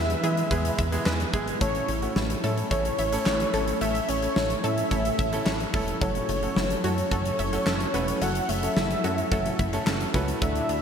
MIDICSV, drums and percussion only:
0, 0, Header, 1, 2, 480
1, 0, Start_track
1, 0, Key_signature, 3, "minor"
1, 0, Tempo, 550459
1, 1405, Time_signature, 4, 2, 24, 8
1, 9434, End_track
2, 0, Start_track
2, 0, Title_t, "Drums"
2, 86, Note_on_c, 9, 42, 55
2, 173, Note_off_c, 9, 42, 0
2, 206, Note_on_c, 9, 42, 76
2, 293, Note_off_c, 9, 42, 0
2, 325, Note_on_c, 9, 42, 51
2, 413, Note_off_c, 9, 42, 0
2, 444, Note_on_c, 9, 36, 94
2, 446, Note_on_c, 9, 42, 82
2, 531, Note_off_c, 9, 36, 0
2, 533, Note_off_c, 9, 42, 0
2, 567, Note_on_c, 9, 42, 56
2, 654, Note_off_c, 9, 42, 0
2, 684, Note_on_c, 9, 42, 75
2, 686, Note_on_c, 9, 36, 94
2, 771, Note_off_c, 9, 42, 0
2, 773, Note_off_c, 9, 36, 0
2, 806, Note_on_c, 9, 42, 62
2, 893, Note_off_c, 9, 42, 0
2, 925, Note_on_c, 9, 38, 111
2, 925, Note_on_c, 9, 39, 92
2, 1012, Note_off_c, 9, 38, 0
2, 1012, Note_off_c, 9, 39, 0
2, 1046, Note_on_c, 9, 42, 49
2, 1134, Note_off_c, 9, 42, 0
2, 1164, Note_on_c, 9, 36, 104
2, 1165, Note_on_c, 9, 42, 75
2, 1252, Note_off_c, 9, 36, 0
2, 1252, Note_off_c, 9, 42, 0
2, 1287, Note_on_c, 9, 42, 58
2, 1374, Note_off_c, 9, 42, 0
2, 1405, Note_on_c, 9, 36, 116
2, 1405, Note_on_c, 9, 42, 77
2, 1492, Note_off_c, 9, 36, 0
2, 1492, Note_off_c, 9, 42, 0
2, 1524, Note_on_c, 9, 42, 50
2, 1611, Note_off_c, 9, 42, 0
2, 1643, Note_on_c, 9, 42, 76
2, 1731, Note_off_c, 9, 42, 0
2, 1765, Note_on_c, 9, 42, 47
2, 1852, Note_off_c, 9, 42, 0
2, 1884, Note_on_c, 9, 38, 107
2, 1971, Note_off_c, 9, 38, 0
2, 2006, Note_on_c, 9, 42, 55
2, 2093, Note_off_c, 9, 42, 0
2, 2125, Note_on_c, 9, 42, 73
2, 2213, Note_off_c, 9, 42, 0
2, 2245, Note_on_c, 9, 42, 51
2, 2332, Note_off_c, 9, 42, 0
2, 2364, Note_on_c, 9, 36, 94
2, 2366, Note_on_c, 9, 42, 84
2, 2451, Note_off_c, 9, 36, 0
2, 2453, Note_off_c, 9, 42, 0
2, 2486, Note_on_c, 9, 42, 58
2, 2573, Note_off_c, 9, 42, 0
2, 2603, Note_on_c, 9, 42, 74
2, 2691, Note_off_c, 9, 42, 0
2, 2725, Note_on_c, 9, 42, 63
2, 2812, Note_off_c, 9, 42, 0
2, 2844, Note_on_c, 9, 38, 112
2, 2844, Note_on_c, 9, 39, 90
2, 2931, Note_off_c, 9, 38, 0
2, 2931, Note_off_c, 9, 39, 0
2, 2965, Note_on_c, 9, 42, 49
2, 3053, Note_off_c, 9, 42, 0
2, 3084, Note_on_c, 9, 42, 74
2, 3171, Note_off_c, 9, 42, 0
2, 3205, Note_on_c, 9, 42, 57
2, 3293, Note_off_c, 9, 42, 0
2, 3324, Note_on_c, 9, 42, 81
2, 3411, Note_off_c, 9, 42, 0
2, 3443, Note_on_c, 9, 42, 50
2, 3531, Note_off_c, 9, 42, 0
2, 3563, Note_on_c, 9, 42, 77
2, 3650, Note_off_c, 9, 42, 0
2, 3684, Note_on_c, 9, 42, 45
2, 3771, Note_off_c, 9, 42, 0
2, 3804, Note_on_c, 9, 38, 105
2, 3891, Note_off_c, 9, 38, 0
2, 3925, Note_on_c, 9, 42, 55
2, 4012, Note_off_c, 9, 42, 0
2, 4045, Note_on_c, 9, 42, 75
2, 4132, Note_off_c, 9, 42, 0
2, 4165, Note_on_c, 9, 42, 50
2, 4252, Note_off_c, 9, 42, 0
2, 4284, Note_on_c, 9, 36, 87
2, 4285, Note_on_c, 9, 42, 83
2, 4371, Note_off_c, 9, 36, 0
2, 4373, Note_off_c, 9, 42, 0
2, 4406, Note_on_c, 9, 42, 56
2, 4493, Note_off_c, 9, 42, 0
2, 4523, Note_on_c, 9, 42, 74
2, 4525, Note_on_c, 9, 36, 93
2, 4611, Note_off_c, 9, 42, 0
2, 4612, Note_off_c, 9, 36, 0
2, 4645, Note_on_c, 9, 42, 62
2, 4732, Note_off_c, 9, 42, 0
2, 4764, Note_on_c, 9, 38, 114
2, 4764, Note_on_c, 9, 39, 92
2, 4851, Note_off_c, 9, 38, 0
2, 4851, Note_off_c, 9, 39, 0
2, 4885, Note_on_c, 9, 42, 47
2, 4972, Note_off_c, 9, 42, 0
2, 5004, Note_on_c, 9, 36, 104
2, 5004, Note_on_c, 9, 46, 73
2, 5091, Note_off_c, 9, 36, 0
2, 5091, Note_off_c, 9, 46, 0
2, 5126, Note_on_c, 9, 42, 60
2, 5213, Note_off_c, 9, 42, 0
2, 5245, Note_on_c, 9, 36, 109
2, 5245, Note_on_c, 9, 42, 80
2, 5332, Note_off_c, 9, 36, 0
2, 5332, Note_off_c, 9, 42, 0
2, 5364, Note_on_c, 9, 42, 50
2, 5451, Note_off_c, 9, 42, 0
2, 5484, Note_on_c, 9, 42, 76
2, 5571, Note_off_c, 9, 42, 0
2, 5605, Note_on_c, 9, 42, 47
2, 5692, Note_off_c, 9, 42, 0
2, 5724, Note_on_c, 9, 38, 107
2, 5811, Note_off_c, 9, 38, 0
2, 5846, Note_on_c, 9, 42, 53
2, 5933, Note_off_c, 9, 42, 0
2, 5966, Note_on_c, 9, 42, 74
2, 6053, Note_off_c, 9, 42, 0
2, 6085, Note_on_c, 9, 42, 51
2, 6172, Note_off_c, 9, 42, 0
2, 6204, Note_on_c, 9, 36, 91
2, 6206, Note_on_c, 9, 42, 80
2, 6291, Note_off_c, 9, 36, 0
2, 6293, Note_off_c, 9, 42, 0
2, 6326, Note_on_c, 9, 42, 58
2, 6413, Note_off_c, 9, 42, 0
2, 6443, Note_on_c, 9, 42, 76
2, 6531, Note_off_c, 9, 42, 0
2, 6565, Note_on_c, 9, 42, 61
2, 6652, Note_off_c, 9, 42, 0
2, 6684, Note_on_c, 9, 38, 112
2, 6684, Note_on_c, 9, 39, 92
2, 6772, Note_off_c, 9, 38, 0
2, 6772, Note_off_c, 9, 39, 0
2, 6805, Note_on_c, 9, 42, 47
2, 6892, Note_off_c, 9, 42, 0
2, 6924, Note_on_c, 9, 42, 77
2, 7011, Note_off_c, 9, 42, 0
2, 7046, Note_on_c, 9, 42, 57
2, 7133, Note_off_c, 9, 42, 0
2, 7164, Note_on_c, 9, 42, 76
2, 7252, Note_off_c, 9, 42, 0
2, 7283, Note_on_c, 9, 42, 50
2, 7370, Note_off_c, 9, 42, 0
2, 7403, Note_on_c, 9, 42, 76
2, 7490, Note_off_c, 9, 42, 0
2, 7524, Note_on_c, 9, 42, 46
2, 7612, Note_off_c, 9, 42, 0
2, 7644, Note_on_c, 9, 38, 109
2, 7731, Note_off_c, 9, 38, 0
2, 7766, Note_on_c, 9, 42, 56
2, 7853, Note_off_c, 9, 42, 0
2, 7885, Note_on_c, 9, 42, 75
2, 7972, Note_off_c, 9, 42, 0
2, 8005, Note_on_c, 9, 42, 50
2, 8092, Note_off_c, 9, 42, 0
2, 8124, Note_on_c, 9, 36, 90
2, 8125, Note_on_c, 9, 42, 81
2, 8211, Note_off_c, 9, 36, 0
2, 8213, Note_off_c, 9, 42, 0
2, 8246, Note_on_c, 9, 42, 54
2, 8333, Note_off_c, 9, 42, 0
2, 8363, Note_on_c, 9, 42, 75
2, 8365, Note_on_c, 9, 36, 91
2, 8451, Note_off_c, 9, 42, 0
2, 8452, Note_off_c, 9, 36, 0
2, 8485, Note_on_c, 9, 42, 61
2, 8572, Note_off_c, 9, 42, 0
2, 8604, Note_on_c, 9, 38, 111
2, 8604, Note_on_c, 9, 39, 88
2, 8691, Note_off_c, 9, 38, 0
2, 8691, Note_off_c, 9, 39, 0
2, 8725, Note_on_c, 9, 42, 47
2, 8813, Note_off_c, 9, 42, 0
2, 8844, Note_on_c, 9, 36, 105
2, 8844, Note_on_c, 9, 42, 77
2, 8931, Note_off_c, 9, 36, 0
2, 8931, Note_off_c, 9, 42, 0
2, 8966, Note_on_c, 9, 42, 58
2, 9053, Note_off_c, 9, 42, 0
2, 9084, Note_on_c, 9, 42, 82
2, 9085, Note_on_c, 9, 36, 115
2, 9172, Note_off_c, 9, 36, 0
2, 9172, Note_off_c, 9, 42, 0
2, 9204, Note_on_c, 9, 42, 49
2, 9291, Note_off_c, 9, 42, 0
2, 9324, Note_on_c, 9, 42, 75
2, 9411, Note_off_c, 9, 42, 0
2, 9434, End_track
0, 0, End_of_file